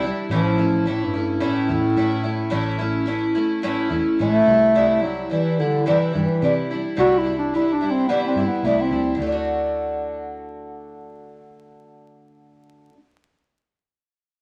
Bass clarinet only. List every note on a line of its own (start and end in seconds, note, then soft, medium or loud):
0.32 0.85 F3 loud
0.89 1.06 A2 medium
1.04 1.42 G2 medium
1.42 3.04 A2 loud
4.20 5.04 A3 loud
5.02 5.29 F#3 medium
5.31 5.61 E3 medium
5.60 5.86 D3 loud
5.87 6.13 E3 medium
6.14 6.68 E3 medium
6.99 7.20 F#4 medium
7.18 7.35 E4 medium
7.39 7.54 D4 medium
7.56 7.74 E4 medium
7.73 7.92 D4 medium
7.90 8.08 C4 medium
8.08 8.26 B3 medium
8.27 8.45 C4 medium
8.47 8.67 B3 medium
8.65 8.83 A3 medium
8.81 9.18 C4 medium